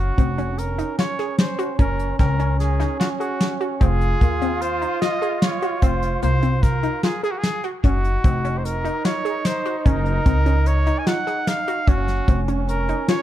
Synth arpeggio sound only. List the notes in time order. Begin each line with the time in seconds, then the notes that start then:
0.18 C4
0.38 C#4
0.78 D#4
0.99 F4
1.19 G#4
1.59 F#4
1.79 C#4
2.19 C4
2.40 C#4
2.80 D#4
3.00 F4
3.20 G#4
3.61 F#4
3.81 C4
4.21 A#3
4.42 C4
4.82 D#4
5.02 F4
5.22 G#4
5.62 F#4
5.83 C4
6.23 A#3
6.43 C4
6.83 D#4
7.04 F4
7.23 G#4
7.64 F#4
7.84 C#4
8.24 C4
8.45 C#4
8.85 D#4
9.05 F4
9.25 G#4
9.66 F#4
9.85 C#4
10.26 C4
10.46 C#4
10.87 D#4
11.07 F4
11.27 G#4
11.68 F#4
11.88 C#4
12.28 C4
12.48 C#4
12.89 D#4
13.09 F4